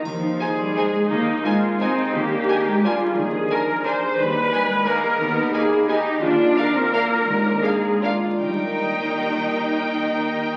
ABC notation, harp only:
X:1
M:3/4
L:1/8
Q:1/4=171
K:Eb
V:1 name="Harp"
[E,Ee] E A c' e A | E, E A c' e A | E, D A b d A | E, D A b d A |
E, E2 _c' e A | E, E A _c' e A | E, D F b d F | E, D F b d F |
[E,G,EBe]6- | [E,G,EBe]6 |]